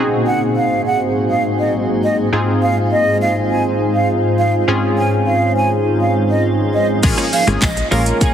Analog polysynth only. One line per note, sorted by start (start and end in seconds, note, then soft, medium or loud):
0.00 2.29 C4 medium
0.00 2.29 D#4 medium
0.00 2.29 F#4 medium
0.00 2.29 G#4 medium
2.32 4.64 G#2 medium
2.32 4.64 C4 medium
2.32 4.64 D#4 medium
2.32 4.64 F4 medium
2.32 4.64 G#4 medium
4.67 6.99 G#2 medium
4.67 6.99 C4 medium
4.67 6.99 C#4 medium
4.67 6.99 F4 medium
4.67 7.00 G#4 medium
7.03 7.25 G#3 loud
7.03 7.25 A#3 loud
7.03 7.25 C#4 loud
7.03 7.25 F4 loud
7.03 7.25 G#4 loud
7.47 7.69 G#3 medium
7.47 7.69 A#3 medium
7.47 7.69 C#4 medium
7.47 7.69 F4 medium
7.47 7.69 G#4 medium
7.91 8.34 G#3 medium
7.91 8.34 A#3 medium
7.91 8.34 C#4 medium
7.91 8.34 F4 medium
7.91 8.34 A#4 medium